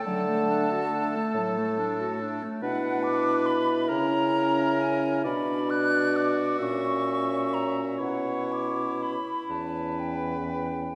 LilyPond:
<<
  \new Staff \with { instrumentName = "Flute" } { \time 6/8 \key d \major \tempo 4. = 45 a''2~ a''8 r8 | \key b \minor fis''8 d'''8 b''8 ais''4 gis''8 | b''8 fis'''8 d'''8 cis'''4 ais''8 | fis''8 d'''8 b''8 a''8 g''8 g''8 | }
  \new Staff \with { instrumentName = "Oboe" } { \time 6/8 \key d \major a'2. | \key b \minor b'4. ais'4. | d''4. e''4. | cis''4 r8 b'4. | }
  \new Staff \with { instrumentName = "Clarinet" } { \time 6/8 \key d \major fis16 a16 d'16 fis'16 d'16 a16 fis16 a16 d'16 fis'16 d'16 a16 | \key b \minor d'4. cis'4. | fis'2. | e'2~ e'8. r16 | }
  \new Staff \with { instrumentName = "French horn" } { \time 6/8 \key d \major a2. | \key b \minor e'2. | d'4. cis'4.~ | cis'4 r8 cis'4. | }
  \new Staff \with { instrumentName = "Bassoon" } { \clef bass \time 6/8 \key d \major d4. a,4. | \key b \minor b,4. cis4. | b,4. ais,4. | b,4 r8 e,4. | }
>>